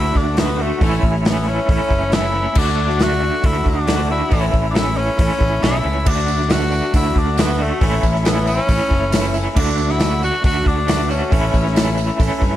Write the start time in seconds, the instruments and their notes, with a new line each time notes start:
Already playing: fingered electric bass D2, clean electric guitar D3 A3 D4 F#4, grand piano A3 D4 F#4 A4, tenor saxophone E4
0.04 steel-string acoustic guitar A3 D4 F#4
0.15 fingered electric bass D2, steel-string acoustic guitar D3 A3 D4 F#4, tenor saxophone D4, kick
0.26 steel-string acoustic guitar A3 D4 F#4
0.37 steel-string acoustic guitar D3 A3 D4 F#4, grand piano A3 D4 F#4 A4, tenor saxophone B3, snare, open hi-hat
0.59 steel-string acoustic guitar D3 A3 D4 F#4, tenor saxophone A3
0.70 steel-string acoustic guitar A3 D4 F#4
0.81 fingered electric bass A1, steel-string acoustic guitar A2 E3 A3 C#4 E4, grand piano A3 C#4 E4 A4, kick, open hi-hat
1.03 fingered electric bass A1, kick
1.14 steel-string acoustic guitar A3 C#4 E4
1.24 steel-string acoustic guitar A2 E3 A3 C#4 E4, grand piano A3 C#4 E4 A4, tenor saxophone B3, snare, open hi-hat
1.47 clean electric guitar A3 C#4 E4, tenor saxophone C#4
1.57 steel-string acoustic guitar A3 C#4 E4
1.69 fingered electric bass A1, clean electric guitar E3 A3 C#4 E4, grand piano A3 C#4 E4 A4, kick, open hi-hat
1.79 steel-string acoustic guitar A3 C#4 E4
1.90 fingered electric bass F#1, steel-string acoustic guitar E3 A3 C#4 E4, kick
2.00 steel-string acoustic guitar A3 C#4 E4
2.11 steel-string acoustic guitar A2 E3 A3 C#4 E4, grand piano A3 C#4 E4 B4, tenor saxophone E4, snare, open hi-hat
2.33 steel-string acoustic guitar E3 A3 C#4 E4
2.44 steel-string acoustic guitar A3 C#4 E4
2.55 fingered electric bass D2, steel-string acoustic guitar D3 A3 D4 F#4, grand piano A3 D4 F#4 A4, tenor saxophone D4, kick, crash
2.88 steel-string acoustic guitar A3 D4 F#4, snare
2.98 steel-string acoustic guitar D3 A3 D4 F#4, grand piano A3 D4 F#4 A4, snare, open hi-hat
3.03 tenor saxophone F#4
3.22 clean electric guitar A3 D4 F#4
3.43 fingered electric bass D2, clean electric guitar D3 A3 D4 F#4, grand piano A3 D4 F#4 A4, tenor saxophone E4, kick, open hi-hat
3.53 steel-string acoustic guitar A3 D4 F#4
3.64 fingered electric bass D2, steel-string acoustic guitar D3 A3 D4 F#4, kick
3.68 tenor saxophone D4
3.75 steel-string acoustic guitar A3 D4 F#4
3.86 steel-string acoustic guitar D3 A3 D4 F#4, grand piano A3 D4 F#4 A4, snare, open hi-hat
4.08 steel-string acoustic guitar D3 A3 D4 F#4, tenor saxophone E4
4.19 steel-string acoustic guitar A3 D4 F#4
4.29 fingered electric bass A1, steel-string acoustic guitar A2 E3 A3 C#4 E4, grand piano A3 C#4 E4 A4, kick, open hi-hat
4.53 fingered electric bass A1, kick
4.63 steel-string acoustic guitar A3 C#4 E4
4.71 steel-string acoustic guitar A2 E3, tenor saxophone D4 E4
4.75 steel-string acoustic guitar A3 C#4 E4, grand piano A3 C#4 E4 G4, snare, open hi-hat
4.97 clean electric guitar A3 C#4 E4, tenor saxophone C#4
5.07 steel-string acoustic guitar A3 C#4 E4
5.19 fingered electric bass A1, clean electric guitar E3 A3 C#4 E4, grand piano A3 C#4 E4 A4, kick, open hi-hat
5.29 steel-string acoustic guitar A3 C#4 E4
5.39 fingered electric bass A1, steel-string acoustic guitar E3 A3 C#4 E4, kick
5.50 steel-string acoustic guitar A3 C#4 E4
5.62 fingered electric bass B1, steel-string acoustic guitar A2 E3 A3 C#4 E4, grand piano A3 C#4 E4 A4, tenor saxophone E4, snare, open hi-hat
5.83 fingered electric bass C#2, steel-string acoustic guitar E3 A3 C#4 E4
5.95 steel-string acoustic guitar A3 C#4 E4
6.06 fingered electric bass D2, steel-string acoustic guitar D3 A3 D4 F#4, grand piano A3 D4 F#4 A4, tenor saxophone D4, kick, tambourine, crash
6.28 tambourine
6.39 steel-string acoustic guitar A3 D4 F#4, snare
6.50 steel-string acoustic guitar D3 A3 D4 F#4, grand piano A3 D4 F#4 B4, tenor saxophone F#4, snare, open hi-hat, tambourine
6.71 clean electric guitar A3 D4 F#4, tambourine
6.83 steel-string acoustic guitar A3 D4 F#4
6.94 fingered electric bass D2, clean electric guitar D3 A3 D4 F#4, grand piano A3 D4 F#4 A4, tenor saxophone E4, kick, open hi-hat, tambourine
7.06 steel-string acoustic guitar A3 D4 F#4
7.15 fingered electric bass D2, steel-string acoustic guitar D3 A3 D4 F#4, tenor saxophone D4, kick
7.27 steel-string acoustic guitar A3 D4 F#4
7.37 steel-string acoustic guitar D3 A3 D4 F#4, grand piano A3 D4 F#4 A4, tenor saxophone B3, snare, open hi-hat, tambourine
7.59 steel-string acoustic guitar D3 A3 D4 F#4, tenor saxophone A3
7.70 steel-string acoustic guitar A3 D4 F#4
7.80 fingered electric bass A1, steel-string acoustic guitar A2 E3 A3 C#4 E4, grand piano A3 C#4 E4 A4, kick, open hi-hat, tambourine
8.03 fingered electric bass A1, kick, tambourine
8.13 steel-string acoustic guitar A3 C#4 E4, snare
8.25 steel-string acoustic guitar A2 E3 A3 C#4 E4, grand piano A3 C#4 E4 A4, tenor saxophone B3, snare, open hi-hat, tambourine
8.47 clean electric guitar A3 C#4 E4, tenor saxophone C#4, tambourine
8.69 fingered electric bass A1, clean electric guitar E3 A3 C#4 E4, grand piano A3 C#4 E4 A4, kick, open hi-hat, tambourine
8.80 steel-string acoustic guitar A3 C#4 E4
8.91 fingered electric bass F#1, steel-string acoustic guitar E3 A3 C#4 E4, kick
9.02 steel-string acoustic guitar A3 C#4 E4
9.12 steel-string acoustic guitar A2 E3 A3 C#4 E4, grand piano A3 C#4 E4 A4, snare, open hi-hat, tambourine
9.34 steel-string acoustic guitar E3 A3 C#4, clean electric guitar E4, tambourine
9.39 steel-string acoustic guitar E4
9.47 steel-string acoustic guitar A3 C#4 E4
9.56 fingered electric bass D2, steel-string acoustic guitar D3 A3 D4 F#4, grand piano A3 D4 F#4 A4, tenor saxophone D4, kick, tambourine, crash
9.78 tambourine
9.90 steel-string acoustic guitar A3 D4 F#4, tenor saxophone E4, snare
9.99 steel-string acoustic guitar D3 A3 D4 F#4, grand piano A3 D4 F#4, snare, open hi-hat, tambourine
10.22 clean electric guitar A3 D4 F#4, tenor saxophone F#4, tambourine
10.36 steel-string acoustic guitar A3 D4
10.43 fingered electric bass D2, clean electric guitar D3 A3 D4 F#4, grand piano A3 D4 F#4 A4, tenor saxophone F#4, kick, open hi-hat, tambourine
10.56 steel-string acoustic guitar A3 D4 F#4
10.66 fingered electric bass D2, steel-string acoustic guitar D3 A3 D4 F#4, tenor saxophone D4, kick
10.77 steel-string acoustic guitar A3 D4 F#4
10.87 steel-string acoustic guitar D3 A3 D4 F#4, grand piano A3 D4 F#4 B4, snare, open hi-hat, tambourine
11.09 steel-string acoustic guitar D3 A3 D4, tenor saxophone C#4, clean electric guitar F#4, tambourine
11.14 steel-string acoustic guitar F#4
11.20 steel-string acoustic guitar A3 D4 F#4
11.31 fingered electric bass A1, steel-string acoustic guitar A2 E3 A3 C#4 E4, grand piano A3 C#4 E4 A4, kick, open hi-hat
11.54 fingered electric bass A1, kick, tambourine
11.63 steel-string acoustic guitar A3 C#4 E4, snare
11.74 steel-string acoustic guitar A2 E3 A3 C#4 E4, grand piano A3 C#4 E4 A4, snare, open hi-hat, tambourine
11.98 clean electric guitar A3 C#4 E4, tambourine
12.07 steel-string acoustic guitar A3 C#4 E4
12.18 fingered electric bass A1, clean electric guitar E3 A3 C#4, grand piano A3 C#4 E4 A4, kick, open hi-hat, tambourine
12.23 clean electric guitar E4
12.29 steel-string acoustic guitar A3 C#4 E4
12.40 fingered electric bass G2, steel-string acoustic guitar E3 A3 C#4 E4, kick, tambourine
12.51 steel-string acoustic guitar C#4 E4